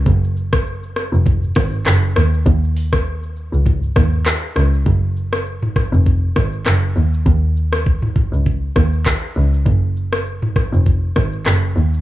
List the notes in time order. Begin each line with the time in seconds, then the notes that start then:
0.06 F#1, kick, shaker
0.24 shaker
0.37 shaker
0.53 kick, cross-stick, shaker
0.66 shaker
0.83 shaker
0.96 cross-stick, shaker
1.13 F1, shaker
1.26 kick, mid tom, shaker
1.43 shaker
1.55 G#1, kick, cross-stick, mid tom, open hi-hat
1.73 shaker
1.86 F#1, cross-stick, clap, shaker
2.03 shaker
2.16 D#2, cross-stick
2.34 shaker
2.46 D#2, kick, shaker
2.64 shaker
2.77 open hi-hat, shaker
2.93 kick, cross-stick, shaker
3.06 shaker
3.23 shaker
3.36 shaker
3.53 C#2, shaker
3.66 kick, mid tom, shaker
3.83 shaker
3.95 D#2, kick, cross-stick, mid tom, shaker
4.13 shaker
4.26 cross-stick, clap, shaker
4.43 shaker
4.56 C#2, cross-stick, shaker
4.74 shaker
4.86 F#1, kick, shaker
5.17 shaker
5.33 cross-stick, shaker
5.46 shaker
5.63 mid tom
5.76 kick, cross-stick, mid tom, shaker
5.93 F1, shaker
6.06 kick, shaker
6.35 G#1, kick, cross-stick, shaker
6.53 shaker
6.66 F#1, cross-stick, clap, shaker
6.96 D#2, shaker
7.14 shaker
7.26 D#2, kick, shaker
7.56 shaker
7.73 cross-stick, shaker
7.86 kick, shaker
8.02 mid tom
8.16 kick, mid tom, shaker
8.33 C#2, shaker
8.46 kick, shaker
8.75 D#2, kick, cross-stick, shaker
8.92 shaker
9.06 kick, cross-stick, clap, shaker
9.36 C#2, shaker
9.54 shaker
9.66 F#1, kick, shaker
9.96 shaker
10.13 cross-stick, shaker
10.26 shaker
10.42 mid tom
10.56 kick, cross-stick, mid tom, shaker
10.73 F1, shaker
10.86 kick, shaker
11.15 G#1, kick, cross-stick, shaker
11.33 shaker
11.46 F#1, cross-stick, clap, shaker
11.76 D#2, shaker
11.94 shaker